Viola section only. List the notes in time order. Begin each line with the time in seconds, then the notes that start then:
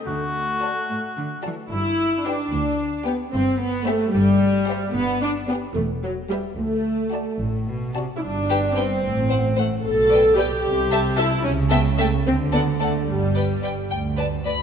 0.07 A3
1.71 E4
2.25 D4
3.05 B3
3.32 C4
3.60 B3
3.86 A3
4.13 G3
4.95 B3
5.22 D4
5.48 B3
5.75 A3
6.03 F#3
6.29 G3
6.57 A3
8.16 E4
8.23 D4
8.77 C4
9.59 A3
9.84 A4
10.36 G4
11.18 E4
11.44 C#4
11.70 B3
11.99 A3
12.27 C4
12.53 B3
12.80 A3
13.08 G3